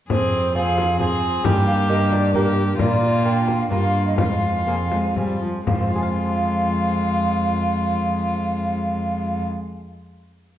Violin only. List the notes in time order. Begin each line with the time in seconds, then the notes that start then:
0.09 G#4
0.55 G#4
1.00 G#4
1.44 G4
2.34 G4
2.79 F4
3.71 F4
4.19 F4
5.68 F4